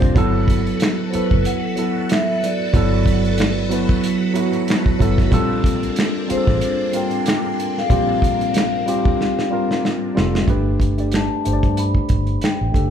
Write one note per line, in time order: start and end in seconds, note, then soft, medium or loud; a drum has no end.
0.00 0.17 F1 medium
0.00 0.17 G3 medium
0.00 0.12 A#3 medium
0.00 0.12 C4 medium
0.00 0.18 C4 medium
0.00 0.12 D4 medium
0.00 0.18 F4 medium
0.00 0.18 A4 medium
0.00 0.17 A#4 medium
0.00 0.18 C5 medium
0.00 0.14 D5 medium
0.00 0.18 A5 medium
0.00 kick medium
0.00 closed hi-hat soft
0.15 0.67 G1 loud
0.15 0.93 F#3 loud
0.15 5.28 F#3 medium
0.15 0.94 B3 loud
0.15 0.94 E4 medium
0.15 5.28 F#4 medium
0.15 5.28 A4 medium
0.15 0.95 A4 loud
0.15 5.28 B4 medium
0.15 kick loud
0.15 closed hi-hat medium
0.48 kick medium
0.48 closed hi-hat medium
0.67 closed hi-hat soft
0.80 finger snap medium
0.80 snare loud
0.80 closed hi-hat medium
1.09 1.65 F#3 medium
1.09 1.14 C5 medium
1.13 1.65 B3 medium
1.13 1.66 E4 medium
1.13 1.66 A4 medium
1.13 1.47 B4 medium
1.13 muted fingered electric bass stroke soft
1.13 closed hi-hat medium
1.31 1.43 F#1 medium
1.31 kick medium
1.45 2.12 F#5 loud
1.45 closed hi-hat medium
1.76 2.54 F#3 medium
1.76 2.55 B3 medium
1.76 2.56 E4 medium
1.76 2.56 A4 medium
1.76 closed hi-hat medium
2.09 2.43 E5 loud
2.09 finger snap medium
2.09 snare loud
2.09 closed hi-hat medium
2.42 3.67 D5 medium
2.42 snare soft
2.42 closed hi-hat medium
2.73 3.85 G1 loud
2.73 3.52 F#3 loud
2.73 3.52 B3 medium
2.73 3.53 E4 medium
2.73 3.53 A4 loud
2.73 kick loud
2.73 closed hi-hat medium
3.06 kick medium
3.06 closed hi-hat medium
3.25 closed hi-hat soft
3.38 finger snap medium
3.38 snare loud
3.38 closed hi-hat medium
3.69 4.23 F#3 medium
3.69 4.23 B3 medium
3.69 4.24 E4 medium
3.69 4.24 B4 medium
3.69 closed hi-hat medium
3.89 kick medium
3.89 closed hi-hat soft
4.04 closed hi-hat medium
4.34 4.87 F#3 medium
4.34 4.88 B3 medium
4.34 4.88 E4 medium
4.34 4.89 F#4 loud
4.34 closed hi-hat medium
4.53 closed hi-hat soft
4.68 finger snap medium
4.68 snare loud
4.68 closed hi-hat medium
4.86 kick medium
4.99 5.26 G1 loud
4.99 5.26 F#3 medium
4.99 5.26 B3 medium
4.99 5.27 E4 medium
4.99 5.27 A4 loud
4.99 kick medium
4.99 closed hi-hat medium
5.18 kick medium
5.18 snare soft
5.18 closed hi-hat soft
5.31 5.83 A#1 loud
5.31 6.10 G3 loud
5.31 10.44 A#3 medium
5.31 6.10 C4 medium
5.31 10.44 C4 medium
5.31 10.44 D4 medium
5.31 6.11 F4 medium
5.31 6.11 A4 loud
5.31 kick loud
5.31 closed hi-hat medium
5.64 kick medium
5.64 closed hi-hat medium
5.83 closed hi-hat soft
5.96 finger snap medium
5.96 snare loud
5.96 closed hi-hat medium
6.28 6.81 G3 medium
6.28 6.81 C4 medium
6.28 6.82 F4 medium
6.28 6.37 G#4 medium
6.28 6.96 C5 loud
6.28 muted fingered electric bass stroke soft
6.28 closed hi-hat medium
6.37 6.86 A4 medium
6.47 6.59 A1 medium
6.47 kick loud
6.47 snare soft
6.61 closed hi-hat medium
6.92 7.71 G3 medium
6.92 7.71 C4 medium
6.92 7.72 F4 medium
6.92 7.72 A#4 medium
6.92 7.80 G5 loud
6.92 closed hi-hat medium
7.11 closed hi-hat soft
7.26 finger snap medium
7.26 snare loud
7.26 closed hi-hat medium
7.60 closed hi-hat medium
7.78 9.81 F5 loud
7.78 snare soft
7.89 9.01 A#1 loud
7.89 8.68 G3 medium
7.89 8.68 C4 medium
7.89 8.69 F4 medium
7.89 8.69 G4 loud
7.89 kick loud
7.89 closed hi-hat medium
8.22 kick medium
8.22 closed hi-hat medium
8.41 closed hi-hat soft
8.54 finger snap medium
8.54 snare loud
8.54 closed hi-hat medium
8.86 9.39 G3 medium
8.86 9.40 C4 medium
8.86 9.40 F4 medium
8.86 9.41 G4 loud
8.86 closed hi-hat medium
9.05 kick loud
9.21 snare medium
9.39 snare medium
9.50 10.03 G3 medium
9.50 10.04 C4 medium
9.50 10.04 F4 medium
9.50 10.05 A#4 medium
9.71 snare medium
9.85 snare medium
10.15 10.42 F1 medium
10.15 10.41 G3 medium
10.15 10.42 C4 medium
10.15 10.42 F4 medium
10.15 10.43 A4 medium
10.15 snare medium
10.35 snare loud
10.47 11.27 G1 loud
10.47 10.86 A3 medium
10.47 10.87 D4 medium
10.47 10.87 G4 medium
10.47 10.88 B4 loud
10.47 kick loud
10.47 closed hi-hat medium
10.80 kick medium
10.80 closed hi-hat medium
10.97 11.35 A3 medium
10.97 11.36 D4 medium
10.97 11.36 G4 medium
10.97 11.37 D5 medium
10.97 closed hi-hat soft
11.12 11.80 A5 medium
11.12 finger snap medium
11.12 snare loud
11.12 closed hi-hat medium
11.44 11.60 G1 medium
11.44 12.47 A3 medium
11.44 12.48 D4 medium
11.44 12.48 G4 medium
11.44 11.53 C5 medium
11.44 closed hi-hat medium
11.53 12.52 D5 medium
11.63 12.00 G2 medium
11.63 kick medium
11.63 closed hi-hat soft
11.77 12.44 B5 loud
11.77 closed hi-hat medium
11.95 kick medium
12.09 12.36 G1 medium
12.09 kick medium
12.09 closed hi-hat medium
12.27 closed hi-hat soft
12.41 12.90 G5 medium
12.41 finger snap medium
12.41 snare loud
12.41 closed hi-hat medium
12.61 12.72 A1 medium
12.72 12.90 F#1 medium
12.72 12.90 A3 medium
12.72 12.90 D4 medium
12.72 12.90 G4 medium
12.72 12.90 A4 medium
12.72 kick medium
12.72 snare soft
12.72 closed hi-hat medium